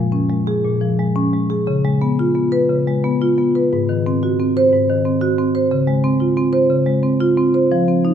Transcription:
marimba
Already playing: A#2 G#3
0.12 C#4
0.30 G#3
0.47 G#4
0.64 A#2
0.81 F3
0.99 G#3
1.16 C#4
1.33 G#3
1.50 G#4
1.67 C#3
1.84 G#3
2.02 B3
2.19 F4
2.35 B3
2.52 B4
2.69 C#3
2.88 G#3
3.04 B3
3.21 F4
3.38 B3
3.55 B4
3.73 G#2
3.89 D#3
4.06 C4
4.23 F#4
4.40 C4
4.57 C5
4.73 G#2
4.89 D#3
5.05 C4
5.21 F#4
5.38 C4
5.55 C5
5.71 C#3
5.87 G#3
6.04 C4
6.20 F4
6.37 C4
6.53 C5
6.70 C#3
6.86 G#3
7.03 C4
7.21 F4
7.37 C4
7.54 C5
7.72 F3
7.88 C4
8.05 D#4

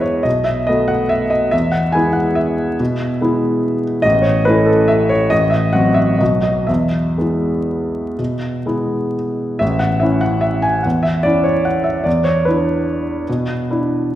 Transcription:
grand piano
Already playing: E2 G#3 B3 E4 B4 D#5 E5
0.00 C#5
0.23 B1 D#5
0.44 E5
0.67 A3 B3 F#4 D#5
0.88 F#5
1.09 E5
1.30 D#5
1.51 E2 E5
1.72 F#5
1.92 G#3 B3 E4 G#5
2.13 F#5
2.35 E5
2.80 B2
3.21 G#3 B3 E4
4.02 A1 D#5
4.22 C#5
4.45 A3 C#4 E4 B4
4.66 A4
4.88 E5
5.09 C#5
5.30 A1 D#5
5.50 E5
5.73 F#3 C4 F#4 F#5
5.94 E5
6.18 B1 F#3 B3 F#4 D#5
6.43 D#5
6.67 E2 E5
7.18 G#3 B3 E4
8.18 B2
8.66 G#3 B3 E4
9.59 A1 E5
9.79 F#5
10.00 C#4 E4 E5
10.21 F#5
10.41 E5
10.62 G#5
10.83 E2 F#5
11.03 E5
11.23 C#4 E4 D5
11.44 C#5
11.65 F#5
11.84 E5
12.04 E2 D5
12.24 C#5
12.45 D4 E4 B4
13.29 B2
13.70 D4 E4

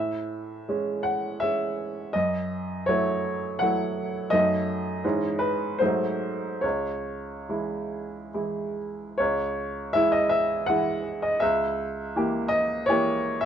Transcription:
upright piano
Already playing: A2 E5
0.68 G#3 C#4
1.03 F#5
1.40 G#3 C#4 E5
2.13 F#2 D#5
2.86 F#3 A3 E4 C#5
3.59 F#3 A3 E4 F#5
4.30 F#2 F#3 A3 D#4 D#5
5.04 G#2 E3 G#3 C#4
5.39 B4
5.79 G#2 F#3 A3 D#4 C5
6.62 C#2 C#5
7.49 E3 G#3 E4
8.34 E3 G#3 E4
9.17 C#2 C#5
9.93 E3 G#3 E4 E5
10.12 D#5
10.29 E5
10.66 E3 G#3 E4 F#5
11.22 D#5
11.40 C#2 E5
12.16 E3 A#3 G4
12.48 D#5
12.86 E3 A#3 G4 C#5
13.41 E5

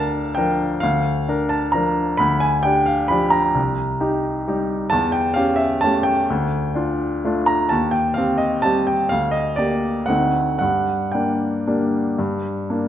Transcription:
grand piano
Already playing: D2 D4 A#4 F5 A5
0.35 F3 D4 A#4 G5
0.80 D2 F5
1.28 D4 A#4
1.49 A5
1.72 F3 D4 A#4 A#5
2.17 D2 B5
2.40 G#5
2.63 D4 G4 G5
2.86 F5
3.08 F3 D4 G4 B5
3.30 A#5
3.55 C2
4.00 D#4 G4
4.48 G3 D#4 G4
4.90 E2 A5
5.12 G5
5.34 C#4 G4 F5
5.56 E5
5.81 A3 C#4 G4 A5
6.03 G5
6.30 D2
6.75 D4 F4
7.25 A3 D4 F4
7.46 A#5
7.69 D#2 A5
7.91 G5
8.14 C4 G4 F5
8.38 D#5
8.62 G3 C4 G4 A5
8.87 G5
9.09 D2 F5
9.31 D#5
9.56 A#3 G4 D5
10.06 D2 A3 C4 D#4 F#5
10.59 G2 F#5
11.12 A#3 D4 G5
11.67 G3 A#3 D4
12.18 G2
12.70 A#3 D4

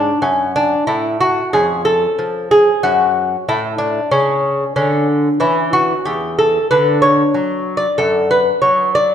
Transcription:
lute
Already playing: D4
0.22 F#2 C#4
0.56 D4
0.87 A2 E4
1.21 F#4
1.53 F2 C#4 G#4
1.85 A4
2.19 F3
2.51 G#4
2.83 F#2 C#4 F#4
3.48 A2 E4
3.78 D4
4.11 C#3 C#4
4.76 D3 C#4
5.40 E3 C#4 E4
5.73 F#4
6.05 E2 G4
6.39 A4
6.71 D3 D4 B4
7.02 C#5
7.34 F#3
7.77 D5
7.98 F#2 D4 A4
8.31 B4
8.62 F#3 C#5
8.95 D5

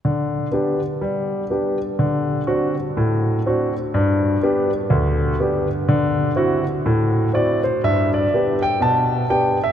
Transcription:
grand piano
0.05 D3
0.52 B3 D4 G4
1.01 G3
1.50 B3 D4 G4
1.99 D3
2.47 C4 D4 F#4
2.97 A2
3.46 C4 D4 F#4
3.94 G2
4.43 B3 D4 G4
4.90 D2
5.40 B3 D4 G4
5.89 D3
6.36 C4 E4 F#4
6.86 A2
7.33 C4 E4 F#4 D5
7.64 C5
7.84 G2 E5
8.14 D5
8.34 B3 D4 G4
8.62 G5
8.81 B2 A5
9.30 B3 D4 G4 G5
9.64 E5

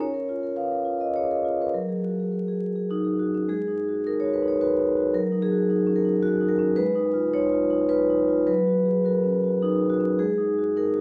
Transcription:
vibraphone
0.00 C#4 C#5
0.14 A#4
0.29 F4
0.43 A#4
0.56 B4 F5
0.71 A#4
0.85 F4
1.00 A#4 D#5
1.15 G#4 C#5
1.31 A#4
1.45 F4
1.61 A#4 B4
1.74 F#3 A#4
1.89 G#4
2.04 F#4
2.20 G#4
2.32 A#4
2.48 G#4
2.62 F#4
2.76 G#4
2.90 D#4 F#4
3.05 G#4
3.19 F#4
3.34 C#4
3.49 G#3 G#4
3.68 D#4
3.89 F#4
4.06 D#4 A#4
4.20 C#5
4.25 F#4
4.33 B4
4.43 D#4
4.48 C#5
4.61 F#4 B4
4.80 D#4
4.97 F#4
5.14 F#3 A#4
5.32 D#4
5.42 G#4
5.52 F#4
5.70 D#4
5.87 C#4
5.96 A#4
6.05 D#4
6.23 F#4
6.41 D#4
6.48 A#4
6.59 C#4
6.76 G#3 B4
6.95 D#4
7.14 F4
7.33 D#4 C#5
7.52 F4
7.70 D#4
7.89 F4 B4
8.10 D#4
8.28 F4
8.47 F#3 B4
8.67 F#4
8.86 G#4
9.04 F#4 A#4
9.24 C#4
9.44 F#4
9.62 D#4 G#4
9.81 F#4
9.90 F#4
9.99 C#4
10.19 G#3 G#4
10.38 D#4
10.58 F#4
10.77 D#4 A#4
10.95 F#4

